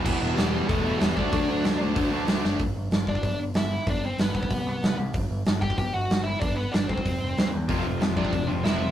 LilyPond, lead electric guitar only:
\new Staff \with { instrumentName = "Lead electric guitar" } { \time 4/4 \key g \major \tempo 4 = 188 <e e'>4 <g g'>4 <a a'>4 <g g'>8 <d' d''>8~ | <d' d''>4. r2 r8 | r4. <d' d''>4 r8 <e' e''>4 | <d' d''>8 <c' c''>8 <b b'>2~ <b b'>8 r8 |
r4. <g' g''>8 <g' g''>8 <fis' fis''>4 <e' e''>8 | <d' d''>8 <b b'>8 <d' d''>8 <c' c''>2 r8 | r4. <d' d''>4 r8 <e' e''>4 | }